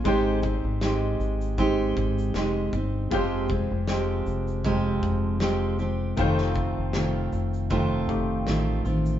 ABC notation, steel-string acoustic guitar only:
X:1
M:4/4
L:1/8
Q:"Swing 16ths" 1/4=78
K:Fm
V:1 name="Steel-string acoustic guitar"
[A,CEG] [CEG] [A,CEG]2 [A,CEG]2 [A,CEG] [CEG] | [F,,C,F,A,CG] [F,A,CG] [F,A,CG]2 [F,,C,F,A,CG]2 [F,A,CG] [F,A,CG] | [F,,C,E,=A,CF]2 [E,A,CF]2 [F,,C,E,A,CF]2 [E,A,CF] [E,A,CF] |]